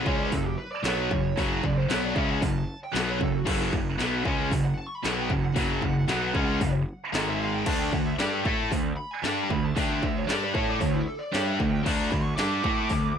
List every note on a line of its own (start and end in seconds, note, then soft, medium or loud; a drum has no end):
0.05 0.30 C#2 medium
0.05 0.31 C#3 medium
0.05 0.32 G#3 loud
0.05 0.32 C#4 loud
0.05 0.14 C#5 loud
0.05 kick loud
0.18 0.26 D5 medium
0.26 0.33 B4 medium
0.32 0.57 F#1 medium
0.32 0.53 F#2 medium
0.32 0.54 C#3 medium
0.32 0.46 A4 medium
0.32 kick medium
0.32 open hi-hat medium
0.46 0.58 G4 medium
0.57 0.71 B4 medium
0.71 0.85 D5 medium
0.84 1.09 B1 loud
0.84 1.11 B2 medium
0.84 1.11 F#3 loud
0.84 1.11 B3 loud
0.84 1.37 C#5 medium
0.84 snare loud
0.84 open hi-hat medium
1.11 1.35 F#1 medium
1.11 1.32 F#2 medium
1.11 1.33 C#3 medium
1.11 kick medium
1.37 1.62 F#1 loud
1.37 1.63 F#2 medium
1.37 1.64 C#3 loud
1.37 1.64 F#3 loud
1.37 kick loud
1.37 open hi-hat medium
1.64 1.88 F#1 medium
1.64 1.85 F#2 medium
1.64 1.85 C#3 medium
1.64 1.77 D5 loud
1.64 kick medium
1.77 1.90 C5 medium
1.90 2.15 B1 loud
1.90 2.15 B2 loud
1.90 2.16 F#3 loud
1.90 2.16 B3 loud
1.90 2.03 C#5 medium
1.90 snare loud
1.90 open hi-hat medium
2.05 2.16 D5 medium
2.16 2.40 C#2 loud
2.16 2.41 C#3 loud
2.16 2.42 G#3 loud
2.16 2.42 C#4 loud
2.16 2.29 E5 loud
2.16 kick loud
2.31 2.43 F#5 loud
2.41 2.66 F#1 medium
2.41 2.63 F#2 medium
2.41 2.63 C#3 medium
2.41 2.78 A5 loud
2.41 kick loud
2.41 open hi-hat medium
2.84 2.95 G5 medium
2.93 3.19 B1 loud
2.93 3.19 B2 medium
2.93 3.19 F#3 loud
2.93 3.20 B3 loud
2.93 3.08 F#5 loud
2.93 snare loud
2.93 open hi-hat medium
3.09 3.21 C#5 medium
3.19 3.45 F#1 medium
3.19 3.41 F#2 medium
3.19 3.41 C#3 medium
3.19 kick medium
3.24 3.38 A4 medium
3.38 3.48 F#4 medium
3.46 3.71 F#1 loud
3.46 3.72 F#2 loud
3.46 3.71 C#3 loud
3.46 3.72 F#3 loud
3.46 3.61 A4 medium
3.46 kick loud
3.46 crash loud
3.62 3.69 F#4 medium
3.62 snare soft
3.72 3.97 F#1 medium
3.72 3.94 F#2 medium
3.72 3.94 C#3 medium
3.72 kick medium
3.97 4.23 B1 medium
3.97 4.24 B2 loud
3.97 4.25 F#3 loud
3.97 4.25 B3 loud
3.97 snare loud
3.97 open hi-hat medium
4.25 4.49 C#2 loud
4.25 4.51 C#3 loud
4.25 4.51 G#3 loud
4.25 4.51 C#4 loud
4.25 kick loud
4.51 4.76 F#1 medium
4.51 4.73 F#2 medium
4.51 4.73 C#3 medium
4.51 kick medium
4.51 open hi-hat medium
4.65 4.78 F#5 loud
4.78 4.86 A5 medium
4.86 4.95 C#6 loud
4.95 5.03 B5 loud
5.04 5.29 B1 loud
5.04 5.30 B2 medium
5.04 5.30 F#3 loud
5.04 5.30 B3 loud
5.04 5.17 A5 loud
5.04 snare loud
5.04 open hi-hat medium
5.18 5.30 G5 medium
5.30 5.54 F#1 medium
5.30 5.51 F#2 medium
5.30 5.52 C#3 medium
5.30 5.44 F#5 loud
5.30 kick medium
5.45 6.71 F#5 medium
5.56 5.81 F#1 loud
5.56 5.81 F#2 loud
5.56 5.82 C#3 loud
5.56 5.82 F#3 loud
5.56 kick loud
5.56 open hi-hat medium
5.82 6.07 F#1 medium
5.82 6.03 F#2 medium
5.82 6.04 C#3 medium
5.82 kick medium
6.08 6.33 B1 medium
6.08 6.34 B2 loud
6.08 6.34 F#3 loud
6.08 6.35 B3 loud
6.08 snare loud
6.08 open hi-hat medium
6.35 6.59 C#2 loud
6.35 6.60 C#3 medium
6.35 6.61 G#3 loud
6.35 6.61 C#4 loud
6.35 kick loud
6.61 6.85 F#1 medium
6.61 6.82 F#2 medium
6.61 6.82 C#3 medium
6.61 kick loud
6.61 open hi-hat medium
7.13 7.62 G#1 medium
7.13 7.65 G#2 loud
7.13 7.65 D#3 loud
7.13 7.65 G#3 medium
7.13 7.27 D#5 loud
7.13 snare loud
7.13 open hi-hat medium
7.28 7.40 E5 medium
7.41 7.53 F5 loud
7.54 7.66 G5 medium
7.66 7.91 D2 loud
7.66 7.91 D3 medium
7.66 7.91 A3 loud
7.66 7.92 D4 loud
7.66 7.78 A5 loud
7.66 kick loud
7.66 crash loud
7.79 7.92 G5 loud
7.92 8.17 D2 medium
7.92 8.14 D3 medium
7.92 8.14 A3 medium
7.92 8.05 F#5 loud
7.92 kick medium
8.05 8.18 E5 medium
8.19 8.43 G2 medium
8.19 8.44 G3 loud
8.19 8.44 D4 loud
8.19 8.44 G4 loud
8.19 8.31 D5 medium
8.19 snare loud
8.19 open hi-hat medium
8.31 8.39 A4 loud
8.45 8.69 A2 loud
8.45 8.70 A3 loud
8.45 8.71 E4 loud
8.45 8.71 A4 loud
8.45 kick loud
8.71 8.95 D2 medium
8.71 8.92 D3 medium
8.71 8.93 A3 medium
8.71 kick loud
8.71 open hi-hat medium
8.97 9.11 B5 loud
9.11 9.24 G#5 loud
9.24 9.48 G2 medium
9.24 9.49 G3 loud
9.24 9.49 D4 loud
9.24 9.50 G4 loud
9.24 9.32 A5 loud
9.24 snare loud
9.24 open hi-hat medium
9.33 9.43 G5 loud
9.43 9.50 A5 loud
9.50 9.74 D2 medium
9.50 9.71 D3 medium
9.50 9.72 A3 medium
9.50 9.65 B5 loud
9.50 kick medium
9.65 9.76 A5 loud
9.76 10.00 D2 loud
9.76 10.02 D3 loud
9.76 10.03 A3 loud
9.76 10.03 D4 loud
9.76 10.03 G5 medium
9.76 kick loud
9.76 open hi-hat medium
10.03 10.27 D2 medium
10.03 10.23 D3 medium
10.03 10.24 A3 medium
10.03 10.16 E5 loud
10.03 kick medium
10.17 10.29 C#5 medium
10.28 10.52 G2 medium
10.28 10.54 G3 medium
10.28 10.54 D4 loud
10.28 10.55 G4 loud
10.28 10.42 D5 medium
10.28 snare loud
10.28 open hi-hat medium
10.43 10.54 B4 medium
10.55 10.79 A2 loud
10.55 10.80 A3 loud
10.55 10.81 E4 loud
10.55 10.81 A4 loud
10.55 10.68 C#5 medium
10.55 kick loud
10.68 10.80 D5 loud
10.79 11.05 D2 medium
10.79 11.01 D3 medium
10.79 11.03 A3 medium
10.79 10.93 C#5 medium
10.79 kick medium
10.79 open hi-hat medium
10.83 11.03 D3 medium
10.94 11.06 E4 medium
11.06 11.19 A4 medium
11.19 11.32 D5 loud
11.33 11.58 G2 loud
11.33 11.59 G3 loud
11.33 11.59 D4 loud
11.33 11.60 G4 loud
11.33 11.46 C#5 medium
11.33 snare loud
11.33 open hi-hat medium
11.45 11.57 E5 medium
11.58 11.84 D2 medium
11.58 11.81 D3 medium
11.58 11.81 A3 medium
11.58 11.70 F#5 loud
11.58 kick medium
11.71 11.84 G5 loud
11.83 12.10 D2 medium
11.83 12.11 D3 medium
11.83 11.95 A5 medium
11.83 kick loud
11.83 crash medium
11.88 12.12 A3 loud
11.88 12.12 D4 loud
11.96 12.09 A#5 loud
12.09 12.36 D2 medium
12.09 12.33 D3 medium
12.09 12.33 A3 medium
12.09 12.23 B5 loud
12.09 kick loud
12.23 12.35 C#6 loud
12.36 12.63 G2 loud
12.36 12.64 G3 loud
12.36 12.64 D4 loud
12.36 12.64 G4 loud
12.36 13.19 D6 loud
12.36 snare loud
12.36 open hi-hat medium
12.64 12.89 A2 loud
12.64 12.89 A3 loud
12.64 12.91 E4 loud
12.64 12.91 A4 loud
12.64 kick loud
12.89 13.15 D2 medium
12.89 13.11 D3 medium
12.89 13.12 A3 medium
12.89 kick medium
12.89 open hi-hat medium